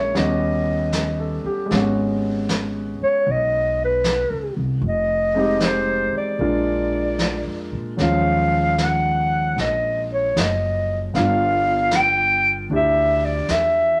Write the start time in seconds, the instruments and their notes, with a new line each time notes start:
Already playing: upright bass A#1, grand piano G#3 A#3 C#4 E4, clarinet C#5
0.15 upright bass D#2, grand piano G3 B3 C#4 F#4, clarinet D#5, brush sweep, snare
0.93 grand piano B4, snare, hi-hat pedal
1.20 grand piano A4
1.44 grand piano G4, muted upright bass stroke
1.66 grand piano G#3
1.71 upright bass G#1, grand piano B3 C#4, brush sweep, snare
1.77 grand piano F#4
2.49 snare, hi-hat pedal
3.00 clarinet C#5, muted upright bass stroke
3.26 upright bass B1, brush sweep
3.31 clarinet D#5
3.85 clarinet B4
4.04 snare, hi-hat pedal
4.30 upright bass C#2
4.57 upright bass C2
4.81 upright bass F1, brush sweep
4.89 clarinet D#5
5.34 grand piano G#3 C4 D#4
5.39 grand piano G4
5.60 snare, hi-hat pedal
5.65 clarinet C5
6.13 muted upright bass stroke
6.18 clarinet D5
6.39 upright bass A#1, grand piano G#3 A#3 D4 F4, brush sweep
7.19 snare, hi-hat pedal
7.45 upright bass F2
7.72 upright bass A#2
7.97 upright bass D#2, grand piano F#3 G#3 C#4, brush sweep, snare
8.02 grand piano F3, clarinet F5
8.78 snare, hi-hat pedal
8.84 clarinet F#5
9.56 upright bass A#1, brush sweep, snare
9.61 clarinet D#5
10.13 clarinet C#5
10.36 upright bass F#1, snare, hi-hat pedal
10.40 clarinet D#5
11.14 upright bass G1, grand piano B3 D4, clarinet F5, brush sweep, snare
11.19 grand piano F4
11.91 snare, hi-hat pedal
11.96 clarinet G5
12.70 upright bass D2, grand piano D4 E4 G4, brush sweep
12.75 clarinet E5
13.25 clarinet D5
13.49 upright bass E2, clarinet E5, snare, hi-hat pedal